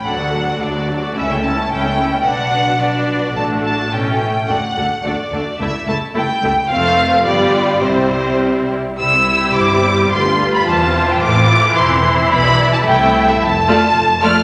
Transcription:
<<
  \new Staff \with { instrumentName = "Violin section" } { \time 2/4 \key d \major \tempo 4 = 108 fis''4 d''4 | e''16 g''16 a''8 g''4 | fis''4 d''4 | a''8 a''8 g''4 |
fis''4 d''4 | e''8 a''8 g''4 | \key c \major f''4 d''4 | c''4. r8 |
e'''4 d'''4 | c'''8. b''16 a''8. g''16 | d'''4 c'''4 | b''8. a''16 g''8. e''16 |
a''4. f'''8 | }
  \new Staff \with { instrumentName = "Violin section" } { \time 2/4 \key d \major << { a'16 d''16 a'16 d''16 a'16 d''16 a'16 d''16 | a'16 cis''16 a'16 cis''16 a'16 cis''16 a'16 cis''16 | b'4 b'4 | a'4 a'8. r16 |
a'8 a'8 a'8 a'8 | a'8 a'8 a'8 a'8 | \key c \major c''4 g'4 | g'4.~ g'16 r16 |
c''2 | b'4 c''4~ | c''2 | d''4 e''4 |
r8 d''16 r8. d''16 r16 | } \\ { a'16 fis'16 a'16 fis'16 a'16 fis'16 a'16 fis'16 | cis'16 e'16 cis'16 e'16 cis'16 e'16 cis'16 e'16 | fis'4 fis'4 | fis'4 e'8. r16 |
fis'8 fis'8 fis'8 fis'8 | a'8 a'8 a'8 a'8 | f'4 f'4 | e'4.~ e'16 r16 |
g16 c'16 e'16 g'16 e'16 c'16 g16 c'16 | b16 d'16 f'16 g'16 g16 c'16 e'16 g'16 | a16 c'16 e'16 a'16 e'16 c'16 a16 c'16 | b16 d'16 e'16 gis'16 a16 c'16 e'16 a'16 |
r8 a'16 r8. a'16 r16 | } >> }
  \new Staff \with { instrumentName = "Viola section" } { \time 2/4 \key d \major << { d'16 fis'16 d'16 fis'16 d'16 fis'16 d'16 fis'16 | e'16 cis'16 e'16 cis'16 e'16 cis'16 e'16 cis'16 | d'4 d'4 | d'4 cis'8. r16 |
d'8 d'8 d'8 d'8 | e'8 e'8 e'8 e'8 | \key c \major c'4 b4 | c'4.~ c'16 r16 |
e'2 | f'2~ | f'4 e'4~ | e'4 e'4 |
r8 f'16 r8. f'16 r16 | } \\ { fis16 a16 fis16 a16 fis16 a16 fis16 a16 | cis'16 a16 cis'16 a16 cis'16 a16 cis'16 a16 | d'4 d'4 | a4 a8. r16 |
a8 a8 a8 a8 | a8 a8 a8 a8 | a4 g4 | g4.~ g16 r16 |
g2~ | g4 e4~ | e2~ | e4 a4 |
r8 a16 r8. a16 r16 | } >> }
  \new Staff \with { instrumentName = "Cello section" } { \clef bass \time 2/4 \key d \major d,4 d,4 | cis,4 cis,4 | b,2 | a,4 b,8 a,8 |
d,8 d,8 d,8 d,8 | cis,8 cis,8 cis,8 cis,8 | \key c \major f,4 g,4 | c4. r8 |
c4 g,4 | d,4 e,4 | a,4 e,4 | b,4 c4 |
f,4 f,4 | }
  \new Staff \with { instrumentName = "Double bass section" } { \clef bass \time 2/4 \key d \major d,4 d,4 | cis,4 cis,4 | b,,2 | a,,4. r8 |
d,8 d,8 d,8 d,8 | cis,8 cis,8 cis,8 cis,8 | \key c \major f,,4 g,,4 | c,4. r8 |
c,4 g,,4 | d,4 e,,4 | a,,4 e,,4 | b,,4 c,4 |
f,,4 f,,4 | }
>>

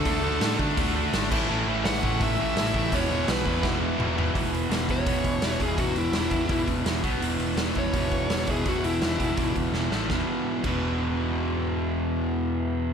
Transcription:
<<
  \new Staff \with { instrumentName = "Lead electric guitar" } { \time 4/4 \key a \major \tempo 4 = 167 a'4. r2 r8 | r4 fis''4 e''8 e''4. | cis''4 b'4 r2 | r4. cis''2 gis'8 |
fis'8 e'2 r4. | r4. cis''2 gis'8 | fis'8 e'2 r4. | r1 |
r1 | }
  \new Staff \with { instrumentName = "Distorted electric guitar" } { \time 4/4 \key a \major <d a d' fis'>2.~ <d a d' fis'>8 <a, e a cis' e'>8~ | <a, e a cis' e'>2. <a, e a cis' e'>8 r8 | <e gis b e'>2.~ <e gis b e'>8 <e gis b e'>8 | r1 |
r1 | r1 | r1 | r1 |
r1 | }
  \new Staff \with { instrumentName = "Distorted electric guitar" } { \clef bass \time 4/4 \key a \major <d a d'>8 <d a d'>8 <d a d'>8 <d a d'>8 <d a d'>8 <d a d'>8 <d a d'>8 <a, e a>8 | <a, e a>8 <a, e a>8 <a, e a>8 <a, e a>8 <a, e a>8 <a, e a>8 <a, e a>8 <a, e a>8 | <e, b, e>8 <e, b, e>8 <e, b, e>8 <e, b, e>8 <e, b, e>8 <e, b, e>8 <e, b, e>8 <e, b, e>8 | <e, b, e>4 <e, b, e>8 <e, b, e>8 <e, b, e>4 <e, b, e>8 <e, b, e>8 |
<e, b, e>4 <e, b, e>8 <e, b, e>8 <e, b, e>4 <e, b, e>8 <b, fis b>8 | <e, b, e>4 <e, b, e>8 <e, b, e>8 <e, b, e>4 <e, b, e>8 <e, b, e>8 | <e, b, e>4 <e, b, e>8 <e, b, e>8 <e, b, e>4 <e, b, e>8 <a, e a>8 | <e, b, e>8 r4 <e, b, e>2~ <e, b, e>8~ |
<e, b, e>1 | }
  \new Staff \with { instrumentName = "Overdriven electric guitar" } { \clef bass \time 4/4 \key a \major <d a d'>8 <d a d'>8 <d a d'>8 <d a d'>8 <d a d'>8 <d a d'>8 <d a d'>8 <a, e a>8 | <a, e a>8 <a, e a>8 <a, e a>8 <a, e a>8 <a, e a>8 <a, e a>8 <a, e a>8 <a, e a>8 | <e, b, e>8 <e, b, e>8 <e, b, e>8 <e, b, e>8 <e, b, e>8 <e, b, e>8 <e, b, e>8 <e, b, e>8 | <e, b, e>4 <e, b, e>8 <e, b, e>8 <e, b, e>4 <e, b, e>8 <e, b, e>8 |
<e, b, e>4 <e, b, e>8 <e, b, e>8 <e, b, e>4 <e, b, e>8 <b, fis b>8 | <e, b, e>4 <e, b, e>8 <e, b, e>8 <e, b, e>4 <e, b, e>8 <e, b, e>8 | <e, b, e>4 <e, b, e>8 <e, b, e>8 <e, b, e>4 <e, b, e>8 <a, e a>8 | <e, b, e>8 r4 <e, b, e>2~ <e, b, e>8~ |
<e, b, e>1 | }
  \new Staff \with { instrumentName = "Picked electric bass" } { \clef bass \time 4/4 \key a \major d,8 d,8 a,8 d8 d,4 gis,,8 a,,8 | a,,8 a,,8 a,,8 a,,8 a,,8 a,,8 a,,8 a,,8 | e,,8 e,,8 b,,8 e,8 e,,4 e,,4 | e,,8 e,,8 e,,8 e,,8 e,,8 e,,8 e,,8 e,,8 |
e,,8 e,,8 e,,8 e,,8 e,,8 e,,8 e,,8 b,,8 | e,,8 e,,8 e,,8 e,,8 e,,8 e,,8 e,,8 e,,8 | e,,8 e,,8 e,,8 e,,8 e,,8 e,,8 e,,8 a,,8 | e,,8 r4 e,,2~ e,,8~ |
e,,1 | }
  \new DrumStaff \with { instrumentName = "Drums" } \drummode { \time 4/4 <hho bd>4 <hho sn>8 bd8 <hho bd>4 <hho sn>8 <cymc bd>8 | r4 <hho sn>8 bd8 <hho bd>4 <hho sn>8 bd8 | <hho bd>4 <hho sn>8 bd8 <bd sn>4 toml8 tomfh8 | <hho bd>8 hho8 <hho sn>8 <hho bd>8 <hho bd>8 <hho bd>8 <hho sn>8 <hho bd>8 |
<hho bd>8 hho8 <hho sn>8 <hho bd>8 <hho bd>8 <hho bd>8 <hho sn>8 <hho bd>8 | hho8 hho8 <hho sn>8 <hho bd>8 <hho bd>8 <hho bd>8 <hho sn>8 <hho bd>8 | <hho bd>8 hho8 <hho sn>8 <hho bd>8 <hho bd>8 <hho bd>8 sn8 sn8 | <bd sn>4 r8 <cymc bd>8 r4 r4 |
r4 r4 r4 r4 | }
>>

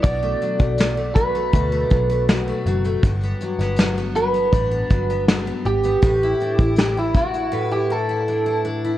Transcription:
<<
  \new Staff \with { instrumentName = "Clean electric guitar" } { \time 4/4 \key b \minor \tempo 4 = 80 d''4. b'4. r4 | r4. b'4. r8 g'8~ | g'4 g'16 e'16 fis'8. g'16 a'4 r8 | }
  \new Staff \with { instrumentName = "Steel-string acoustic guitar" } { \time 4/4 \key b \minor <b, d'>16 a16 fis16 a16 fis16 a16 fis16 a16 <b, d'>16 a16 fis16 a16 fis16 a16 fis16 a16 | <g, d'>16 b16 fis16 b16 fis16 b16 fis16 b16 <g, d'>16 b16 fis16 b16 fis16 b8 b16 | <a, b'>16 e'16 d'16 e'16 d'16 e'16 d'16 e'16 <a, b'>16 e'16 d'16 e'16 d'16 e'16 d'16 e'16 | }
  \new Staff \with { instrumentName = "Picked electric bass" } { \clef bass \time 4/4 \key b \minor b,,8 r16 b,,4~ b,,16 d,8 b,,4 fis,,8 | g,,8 r16 g,,4~ g,,16 a,,8 g,,4 gis,,8 | a,,8 r16 a,,4~ a,,16 r2 | }
  \new DrumStaff \with { instrumentName = "Drums" } \drummode { \time 4/4 <hh bd>8 hh16 <hh bd>16 <hh sn>8 <hh bd>16 hh16 <hh bd>8 <hh bd>16 hh16 <hh sn>8 hh16 hh16 | <hh bd>16 hh16 hh16 <hh sn>16 <hh sn>8 hh16 hh16 <hh bd>8 <hh bd>16 hh16 <hh sn>16 hh16 hh16 hh16 | <hh bd>8 hh16 <hh bd>16 <hh sn>8 <hh bd>16 hh16 r4 r4 | }
>>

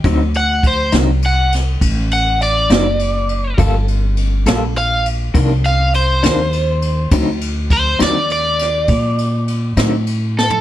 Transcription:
<<
  \new Staff \with { instrumentName = "Overdriven electric guitar" } { \time 12/8 \key d \phrygian \tempo 4. = 68 r8 fis''8 c''8 r8 fis''8 r4 fis''8 d''2 | r2 f''8 r4 f''8 c''2 | r4 c''8 d''8 d''2. r8 a'8 | }
  \new Staff \with { instrumentName = "Clean electric guitar" } { \time 12/8 \key d \phrygian <d fis c' ees'>8 r4 <d fis c' ees'>8 r2 r8 <d fis c' ees'>8 r4 | <g bes f' a'>8 r4 <g bes f' a'>8 r4 <c ees bes d'>8 r4 <c ees bes d'>8 r4 | <d fis c' ees'>8 r4 <d fis c' ees'>8 r2 r8 <d fis c' ees'>8 r4 | }
  \new Staff \with { instrumentName = "Upright bass" } { \clef bass \time 12/8 \key d \phrygian d,4. c,4. a,,4. fis,,4. | g,,4. bes,,4. c,4. ees,4. | d,4. ees,4. bes,4. a,4. | }
  \new DrumStaff \with { instrumentName = "Drums" } \drummode { \time 12/8 <bd cymr>8 cymr8 <bd cymr>8 <cymr sn>8 cymr8 <cymr sn>8 <bd cymr>8 cymr8 cymr8 <cymr sn>8 cymr8 cymr8 | <bd cymr>8 cymr8 cymr8 <cymr sn>8 cymr8 cymr8 <bd cymr>8 cymr8 cymr8 <cymr sn>8 cymr8 cymr8 | <bd cymr>8 cymr8 <bd cymr>8 <cymr sn>8 cymr8 <cymr sn>8 <bd cymr>8 cymr8 cymr8 <cymr sn>8 cymr8 sn16 tomfh16 | }
>>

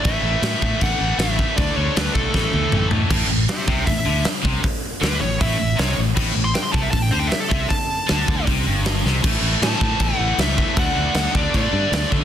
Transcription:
<<
  \new Staff \with { instrumentName = "Lead electric guitar" } { \time 4/4 \key d \major \tempo 4 = 156 e''2 fis''4 e''4 | d''8 cis''8 b'8 a'2 r8 | r4 <g' e''>8 <e'' g''>8 e''4 r4 | r4 b'8 cis''8 e''4 cis''8 r8 |
r8. c'''16 g''16 c'''16 a''16 e''16 a''16 g''16 c''16 g''16 e''16 a'16 e''8 | a''2 r2 | r4 a''4 fis''4 e''4 | fis''4. d''8 d''4. r8 | }
  \new Staff \with { instrumentName = "Distorted electric guitar" } { \clef bass \time 4/4 \key d \major <a, e a>8 <a, e a>8 <a, e a>8 <a, e a>8 <a, e a>8 <a, e a>8 <a, e a>8 <a, e a>8 | <d a d'>8 <d a d'>8 <d a d'>8 <d a d'>8 <a, e a>8 <a, e a>8 <a, e a>8 <a, e a>8 | a,8 a,8 r8 c8 a,8 d8 r8 c8 | r4 d8 a,8 a,8 a,8 c8 a,8 |
a,8 a,8 r8 c8 a,8 d8 r8 c8 | r4 d8 d8 c8 g,4 c8 | <a, e a>8 <a, e a>8 <a, e a>8 <a, e a>8 <a, e a>8 <a, e a>8 <a, e a>8 <a, e a>8 | <d a d'>8 <d a d'>8 <d a d'>8 <d a d'>8 <d a d'>8 <d a d'>8 <d a d'>8 <d a d'>8 | }
  \new Staff \with { instrumentName = "Distorted electric guitar" } { \clef bass \time 4/4 \key d \major <a, e a>4. <a, e a>2~ <a, e a>8 | <d a d'>4. <d a d'>8 <a, e a>4. <a, e a>8 | a,8 a,8 r8 c8 a,8 d8 r8 c8 | r4 d8 a,8 a,8 a,8 c8 a,8 |
a,8 a,8 r8 c8 a,8 d8 r8 c8 | r4 d8 d8 c8 g,4 c8 | <a, e a>4. <a, e a>2~ <a, e a>8 | <d a d'>4. <d a d'>2~ <d a d'>8 | }
  \new Staff \with { instrumentName = "Fingered electric bass" } { \clef bass \time 4/4 \key d \major a,,8 a,,8 a,8 a,8 a,,8 a,,8 a,,4 | d,8 d,8 d,8 b,,8 a,,8 d,8 a,,8 a,8 | a,,8 a,,8 r8 c,8 a,,8 d,8 r8 c,8 | r4 d,8 a,,8 a,,8 a,,8 c,8 a,,8 |
a,,8 a,,8 r8 c,8 a,,8 d,8 r8 c,8 | r4 d,8 d,8 c,8 g,,4 c,8 | a,,8 a,,8 a,8 a,8 a,,8 a,,8 cis,4 | d,8 d,8 d,8 d,8 a,8 g,8 d,8 d8 | }
  \new DrumStaff \with { instrumentName = "Drums" } \drummode { \time 4/4 <cymc bd>4 <cymc sn>8 bd8 <cymc bd>4 <cymc sn>8 bd8 | <cymc bd>4 <cymc sn>8 bd8 <bd sn>8 tommh8 toml8 tomfh8 | <cymc bd>4 <hho sn>8 bd8 <hho bd>4 <hho sn>8 bd8 | <hho bd>4 <hho sn>4 <hho bd>4 <hho sn>4 |
<cymc bd>4 <hho sn>8 bd8 <hho bd>4 <hho sn>8 bd8 | <hho bd>4 <hho sn>8 bd8 <hho bd>4 <hho sn>8 sn8 | <cymc bd>4 <cymc sn>8 bd8 <cymc bd>4 <cymc sn>8 bd8 | <cymc bd>4 <cymc sn>8 bd8 <cymc bd>4 <cymc sn>8 bd8 | }
>>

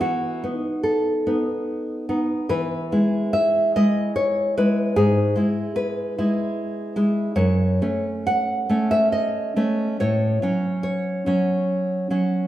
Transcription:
\new Staff \with { instrumentName = "Nylon-string guitar" } { \time 3/4 \key e \major \tempo 4 = 72 << { fis'4 a'4. r8 | b'4 e''8 dis''8 cis''8 b'8 | gis'4 b'4. r8 | cis''4 fis''8. e''16 dis''4 |
cis''4 cis''4. r8 | } \\ { e8 <b dis'>4 <b dis'>4 <b dis'>8 | e8 <gis e'>4 <gis e'>4 <gis e'>8 | gis,8 <gis e'>4 <gis e'>4 <gis e'>8 | fis,8 <a cis'>4 <a cis'>4 <a cis'>8 |
a,8 <fis cis'>4 <fis cis'>4 <fis cis'>8 | } >> }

